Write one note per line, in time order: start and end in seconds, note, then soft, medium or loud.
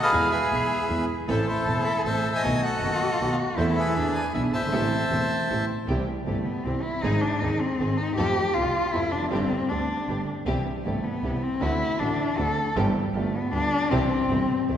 0.00 0.14 F#4 loud
0.00 0.11 A4 medium
0.00 0.11 D#5 medium
0.00 0.30 F5 loud
0.04 0.31 G#4 medium
0.04 0.31 B4 medium
0.12 0.29 E2 medium
0.12 0.29 E3 medium
0.12 0.29 G#3 medium
0.12 0.29 B3 medium
0.12 0.29 E4 medium
0.12 1.09 G#4 loud
0.12 0.29 G#4 medium
0.31 1.05 G#4 medium
0.31 1.05 B4 medium
0.31 1.05 E5 medium
0.50 0.67 B1 medium
0.50 0.68 B1 soft
0.50 0.68 B2 medium
0.50 0.68 E3 soft
0.50 0.68 G#3 soft
0.50 0.67 B3 soft
0.50 0.68 B3 soft
0.50 0.67 E4 soft
0.50 0.67 G#4 soft
0.50 0.68 G#4 medium
0.89 1.05 E2 medium
0.89 1.06 E2 medium
0.89 1.06 E3 medium
0.89 1.06 G#3 soft
0.89 1.06 B3 medium
0.89 1.06 B3 soft
0.89 1.06 E4 soft
0.89 1.06 G#4 soft
0.89 1.06 G#4 medium
1.28 1.45 A1 medium
1.28 1.44 A2 medium
1.28 1.44 E3 medium
1.28 1.45 A3 medium
1.28 1.45 C4 medium
1.28 1.45 E4 medium
1.28 2.39 A4 loud
1.28 1.45 A4 medium
1.28 1.47 A4 medium
1.28 1.45 C5 medium
1.28 1.37 E5 medium
1.47 2.02 E4 medium
1.47 2.02 A4 medium
1.47 1.83 C5 medium
1.66 1.83 E1 medium
1.66 1.83 E2 medium
1.66 1.83 E3 soft
1.66 1.83 A3 soft
1.66 1.83 C4 soft
1.66 1.83 E4 soft
1.66 1.83 A4 soft
1.66 1.84 A4 soft
1.84 1.93 B5 medium
2.05 2.21 A1 medium
2.05 2.22 A1 soft
2.05 2.21 A2 medium
2.05 2.21 E3 soft
2.05 2.21 A3 soft
2.05 2.21 C4 soft
2.05 2.22 C4 medium
2.05 2.22 E4 soft
2.05 2.22 A4 soft
2.05 2.22 A4 medium
2.05 2.42 C5 medium
2.05 2.42 E5 medium
2.05 2.32 A5 medium
2.35 2.64 D#5 medium
2.35 2.61 G#5 loud
2.43 2.59 B1 medium
2.43 2.60 B1 medium
2.43 2.59 B2 medium
2.43 2.59 D#3 medium
2.43 2.60 A3 medium
2.43 2.59 B3 medium
2.43 2.60 B3 medium
2.43 2.60 D#4 medium
2.43 2.60 F#4 medium
2.43 3.58 F#4 loud
2.43 2.60 A4 medium
2.63 3.36 A4 medium
2.63 3.36 D#5 medium
2.63 3.35 F#5 medium
2.82 2.98 F#1 medium
2.82 2.98 F#2 medium
2.82 2.98 D#3 soft
2.82 2.98 A3 soft
2.82 2.98 B3 soft
2.82 2.98 D#4 soft
2.82 2.98 F#4 soft
2.82 2.98 A4 medium
3.20 3.35 B1 medium
3.20 3.36 B1 medium
3.20 3.36 B2 medium
3.20 3.36 D#3 soft
3.20 3.36 A3 soft
3.20 3.36 B3 medium
3.20 3.36 B3 soft
3.20 3.36 D#4 soft
3.20 3.36 F#4 medium
3.20 3.36 A4 medium
3.57 3.73 E2 medium
3.57 3.74 E2 medium
3.57 3.74 E3 medium
3.57 3.74 A3 medium
3.57 3.74 C4 medium
3.57 3.95 E4 medium
3.57 3.74 E4 medium
3.57 3.94 E4 medium
3.57 3.74 A4 medium
3.57 3.94 A4 medium
3.57 3.66 C5 medium
3.77 4.31 G#4 medium
3.77 4.31 B4 medium
3.77 4.12 E5 medium
3.95 4.11 E2 soft
3.95 4.12 E2 medium
3.95 4.11 E3 medium
3.95 4.11 B3 soft
3.95 4.31 D4 medium
3.95 4.11 D4 soft
3.95 4.12 D4 medium
3.95 4.12 E4 soft
3.95 4.12 G#4 medium
4.15 4.33 G#5 medium
4.33 4.50 B1 medium
4.33 4.50 B2 soft
4.33 4.49 E3 soft
4.33 4.50 B3 soft
4.33 4.50 D4 medium
4.33 4.50 D4 soft
4.33 4.73 E4 medium
4.33 4.50 E4 medium
4.33 4.50 G#4 soft
4.33 4.50 G#4 medium
4.33 4.42 E5 medium
4.53 4.71 G1 soft
4.53 5.65 C5 medium
4.53 5.65 E5 medium
4.53 5.65 A5 medium
4.58 4.63 F#1 soft
4.64 4.68 G1 medium
4.68 4.72 G#1 medium
4.68 4.88 A1 medium
4.68 5.49 C4 medium
4.68 4.88 C4 medium
4.72 4.89 A1 medium
4.72 4.89 A2 medium
4.72 4.88 E3 medium
4.72 4.89 A3 medium
4.72 4.89 C4 medium
4.72 4.88 G4 medium
4.72 4.89 G4 medium
4.72 4.88 A4 medium
5.10 5.27 E1 medium
5.10 5.27 E1 soft
5.10 5.27 E2 soft
5.10 5.27 E3 soft
5.10 5.27 A3 soft
5.10 5.26 C4 soft
5.10 5.27 C4 soft
5.10 5.27 G4 soft
5.10 5.27 A4 medium
5.49 5.66 A1 medium
5.49 5.67 A1 soft
5.49 5.67 A2 medium
5.49 5.66 E3 soft
5.49 5.67 A3 soft
5.49 5.65 C4 medium
5.49 5.67 C4 soft
5.49 5.65 G4 soft
5.49 5.67 G4 soft
5.49 5.65 A4 medium
5.87 6.04 C2 medium
5.87 6.05 C2 medium
5.87 6.05 C3 medium
5.87 6.05 E3 medium
5.87 6.05 G3 medium
5.87 6.04 C4 medium
5.87 6.05 C4 medium
5.87 6.04 E4 medium
5.87 6.04 G4 medium
5.87 6.05 G4 medium
6.26 6.43 G1 soft
6.26 6.43 G2 soft
6.26 6.43 E3 soft
6.26 6.43 G3 soft
6.26 6.46 A3 medium
6.26 6.43 C4 soft
6.26 6.43 E4 soft
6.26 6.43 G4 soft
6.45 6.65 B3 medium
6.64 6.81 C2 medium
6.64 6.82 C2 medium
6.64 6.82 C3 medium
6.64 6.82 E3 soft
6.64 6.82 G3 soft
6.64 6.84 C4 medium
6.64 6.81 C4 medium
6.64 6.82 C4 soft
6.64 6.81 E4 soft
6.64 6.81 G4 medium
6.64 6.82 G4 soft
6.83 7.04 E4 medium
7.02 7.19 G#1 medium
7.02 7.20 G#1 medium
7.02 7.20 G#2 medium
7.02 7.19 D#3 medium
7.02 7.19 G#3 medium
7.02 7.19 C4 medium
7.02 7.23 D#4 medium
7.02 7.20 D#4 medium
7.02 7.20 G#4 medium
7.21 7.42 D4 medium
7.40 7.58 D#1 medium
7.40 7.58 D#2 soft
7.40 7.58 D#2 medium
7.40 7.57 D#3 soft
7.40 7.57 G#3 soft
7.40 7.57 C4 soft
7.40 7.58 C4 medium
7.40 7.62 D#4 medium
7.40 7.58 D#4 soft
7.40 7.58 G#4 soft
7.40 7.58 G#4 medium
7.61 7.99 C4 medium
7.79 7.96 G#1 medium
7.79 7.95 G#2 medium
7.79 7.96 D#3 soft
7.79 7.95 G#3 soft
7.79 7.96 C4 medium
7.79 7.96 C4 soft
7.79 7.96 D#4 soft
7.79 7.96 G#4 medium
7.98 8.15 D#4 medium
8.16 8.33 F2 medium
8.16 8.34 F2 medium
8.16 8.34 F3 medium
8.16 8.34 A3 medium
8.16 8.33 C4 medium
8.16 8.34 C4 medium
8.16 8.33 F4 medium
8.16 8.55 G4 loud
8.16 8.34 A4 loud
8.16 8.34 A4 medium
8.54 8.72 C2 medium
8.54 8.72 C3 soft
8.54 8.71 F3 soft
8.54 8.71 A3 soft
8.54 8.71 C4 soft
8.54 8.72 C4 soft
8.54 8.94 F4 medium
8.54 8.71 F4 soft
8.54 8.72 A4 medium
8.54 8.72 A4 soft
8.93 9.10 F2 medium
8.93 9.10 F3 medium
8.93 9.10 A3 soft
8.93 9.09 C4 medium
8.93 9.10 C4 soft
8.93 9.13 E4 medium
8.93 9.09 F4 soft
8.93 9.09 A4 medium
8.93 9.10 A4 soft
9.12 9.31 F1 medium
9.12 9.30 D4 medium
9.18 9.22 E2 medium
9.22 9.27 F2 medium
9.28 9.47 G1 medium
9.28 9.48 G1 medium
9.28 9.32 F#2 medium
9.28 9.48 G2 medium
9.28 9.48 D3 medium
9.28 9.47 G3 medium
9.28 9.70 C4 medium
9.28 9.47 C4 medium
9.28 9.48 C4 medium
9.28 9.48 D4 medium
9.28 9.48 G4 medium
9.69 9.86 D2 soft
9.69 9.86 D2 medium
9.69 9.86 D3 soft
9.69 9.87 G3 soft
9.69 9.86 C4 soft
9.69 10.27 D4 medium
9.69 9.86 D4 soft
9.69 9.86 G4 soft
10.08 10.24 G1 soft
10.08 10.25 G1 soft
10.08 10.25 G2 soft
10.08 10.25 D3 soft
10.08 10.25 G3 soft
10.08 10.24 B3 medium
10.08 10.25 B3 soft
10.08 10.24 D4 soft
10.08 10.24 G4 medium
10.08 10.25 G4 soft
10.45 10.62 C2 medium
10.45 10.63 C2 medium
10.45 10.63 C3 medium
10.45 10.63 E3 medium
10.45 10.63 G3 medium
10.45 10.62 C4 medium
10.45 10.63 C4 medium
10.45 10.63 E4 medium
10.45 10.63 G4 medium
10.45 10.64 G4 medium
10.84 11.01 G1 soft
10.84 11.02 G1 soft
10.84 11.02 G2 medium
10.84 11.02 E3 soft
10.84 11.02 G3 soft
10.84 11.05 A3 medium
10.84 11.01 C4 soft
10.84 11.02 C4 soft
10.84 11.01 E4 soft
10.84 11.01 G4 soft
10.84 11.02 G4 soft
11.04 11.44 B3 medium
11.22 11.39 C2 medium
11.22 11.40 C2 medium
11.22 11.40 C3 medium
11.22 11.40 E3 soft
11.22 11.40 G3 soft
11.22 11.39 C4 medium
11.22 11.40 C4 soft
11.22 11.39 E4 medium
11.22 11.39 G4 medium
11.22 11.40 G4 soft
11.43 11.63 C4 medium
11.61 11.78 D2 medium
11.61 11.78 D3 medium
11.61 11.78 A3 medium
11.61 11.77 C4 medium
11.61 11.78 C4 medium
11.61 11.78 D4 medium
11.61 12.01 E4 medium
11.61 11.78 F#4 medium
11.99 12.16 A1 medium
11.99 12.17 A2 medium
11.99 12.17 D3 soft
11.99 12.17 A3 soft
11.99 12.16 C4 soft
11.99 12.17 C4 soft
11.99 12.39 D4 medium
11.99 12.16 D4 soft
11.99 12.16 F#4 medium
11.99 12.17 F#4 soft
12.37 12.54 D2 medium
12.37 12.55 D2 medium
12.37 12.55 D3 soft
12.37 12.54 A3 soft
12.37 12.54 C4 medium
12.37 12.55 C4 soft
12.37 12.54 D4 medium
12.37 12.54 F#4 medium
12.37 12.55 F#4 soft
12.37 12.66 A4 medium
12.76 12.92 G1 loud
12.76 12.92 G1 medium
12.76 12.92 G2 medium
12.76 12.92 E3 medium
12.76 12.92 G3 medium
12.76 12.92 C4 medium
12.76 12.92 E4 medium
12.76 12.92 G4 medium
12.76 12.93 G4 medium
13.14 13.30 G1 medium
13.14 13.31 G1 medium
13.14 13.31 G2 medium
13.14 13.31 D3 soft
13.14 13.31 G3 soft
13.14 13.37 A3 medium
13.14 13.30 B3 soft
13.14 13.31 B3 soft
13.14 13.30 F4 soft
13.14 13.31 F4 medium
13.14 13.30 G4 medium
13.35 13.53 B3 medium
13.52 13.68 D2 medium
13.52 13.69 D2 medium
13.52 13.69 D3 medium
13.52 13.69 G3 soft
13.52 13.68 B3 medium
13.52 13.69 B3 soft
13.52 13.93 D4 loud
13.52 13.68 F4 medium
13.52 13.69 F4 soft
13.52 13.68 G4 medium
13.91 14.07 C2 medium
13.91 14.07 C3 medium
13.91 14.07 E3 medium
13.91 14.07 G3 medium
13.91 14.07 C4 medium
13.91 14.77 C4 medium
13.91 14.07 C4 medium
13.91 14.07 E4 medium
13.91 14.07 G4 medium
14.29 14.45 G1 medium
14.29 14.46 G1 medium
14.29 14.46 G2 medium
14.29 14.46 E3 soft
14.29 14.46 G3 soft
14.29 14.45 C4 soft
14.29 14.46 C4 soft
14.29 14.45 E4 soft
14.29 14.45 G4 medium
14.29 14.46 G4 medium
14.68 14.77 C2 medium
14.68 14.77 C2 soft
14.68 14.77 C3 soft
14.68 14.77 E3 soft
14.68 14.77 G3 soft
14.68 14.77 C4 medium
14.68 14.77 C4 soft
14.68 14.77 E4 soft
14.68 14.77 G4 medium
14.68 14.77 G4 soft